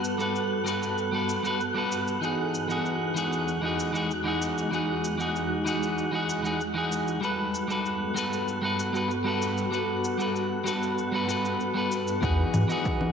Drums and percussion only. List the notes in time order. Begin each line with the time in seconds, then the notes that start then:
0.04 shaker
0.20 shaker
0.36 shaker
0.67 shaker
0.83 shaker
0.98 shaker
1.29 shaker
1.45 shaker
1.61 shaker
1.92 shaker
2.08 shaker
2.23 shaker
2.54 shaker
2.70 shaker
2.86 shaker
3.17 shaker
3.33 shaker
3.48 shaker
3.80 shaker
3.95 shaker
4.11 shaker
4.42 shaker
4.58 shaker
4.73 shaker
5.04 shaker
5.20 shaker
5.36 shaker
5.67 shaker
5.83 shaker
5.98 shaker
6.29 shaker
6.45 shaker
6.61 shaker
6.92 shaker
7.08 shaker
7.23 shaker
7.55 shaker
7.70 shaker
7.86 shaker
8.17 shaker
8.33 shaker
8.48 shaker
8.80 shaker
8.95 shaker
9.11 shaker
9.42 shaker
9.58 shaker
9.73 shaker
10.04 shaker
10.20 shaker
10.36 shaker
10.67 shaker
10.83 shaker
10.98 shaker
11.29 shaker
11.45 shaker
11.60 shaker
11.92 shaker
12.07 shaker
12.23 kick, shaker
12.54 low conga, shaker
12.70 shaker
12.85 kick, shaker
13.01 low conga